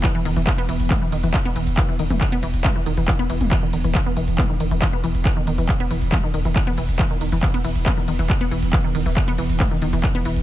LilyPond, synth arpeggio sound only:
\new Staff \with { instrumentName = "Synth arpeggio sound" } { \clef bass \time 4/4 \key c \lydian \tempo 4 = 138 e16 e16 dis16 e16 e16 b16 e16 r16 e16 e16 dis16 e16 e16 b16 e16 r16 | e16 e16 dis16 e16 e16 b16 e16 r16 e16 e16 dis16 e16 e16 b16 e16 r16 | e16 dis16 dis16 e16 e16 b16 e16 r16 e16 dis16 dis16 e16 e16 b16 e16 r16 | e16 dis16 dis16 e16 e16 b16 e16 r16 e16 dis16 dis16 e16 e16 b16 e16 r16 |
e16 dis16 dis16 e16 e16 b16 e16 r16 e16 dis16 dis16 e16 e16 b16 e16 r16 | e16 dis16 dis16 e16 e16 b16 e16 r16 e16 dis16 dis16 e16 e16 b16 e16 r16 | }